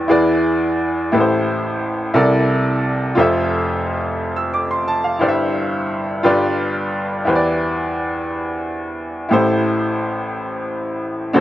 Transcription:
Already playing: E2 E3 E4 G4 B4 D5
0.08 E2 E3 E4 G#4 B4 D5
1.12 A1 A2 E4 G4 A4 B4
1.20 C5
2.14 C2 C3 E4 A4 A#4 D5
3.15 F1 F2 F4 A4 C5
3.19 E5
4.36 E6
4.54 D6
4.71 C6
4.88 A5
5.04 F5
5.19 G1 G2 E4 G4 C5 D5
5.28 E5
6.23 G1 G2 F4 G4 B4 D5
7.25 E2 E3 E4 G4 B4 C5
7.35 D5
9.29 A1 A2 E4 G4 A4
9.33 C5
11.33 D2 D3 D4 F#4 A4 C5

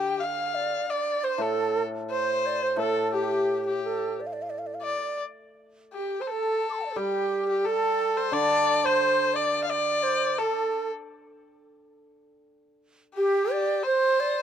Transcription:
Already playing: D3 G4 G5
0.20 F5
0.55 D5
0.89 D5
1.24 C5
1.34 C5
1.38 A2 A4
2.10 C5
2.46 D5
2.63 C5
2.77 A2 A4
3.13 G4
3.66 G4
3.84 A4
4.20 D5
4.27 F5
4.33 D5
4.42 F5
4.50 D5
4.59 F5
4.67 D5
4.74 F5
4.82 D5
5.93 G4
6.20 C5
6.27 A4
6.70 C6 D6
6.76 G5 A5
6.82 D5 F5
6.91 A4 C5
6.96 G3 G4
7.49 G4
7.65 A4
8.17 C5
8.32 D3 D5
8.85 C5
9.34 D5
9.64 F5
9.69 D5
10.03 C5
10.38 A4
13.15 G4
13.52 D5
13.84 C5
14.20 D5

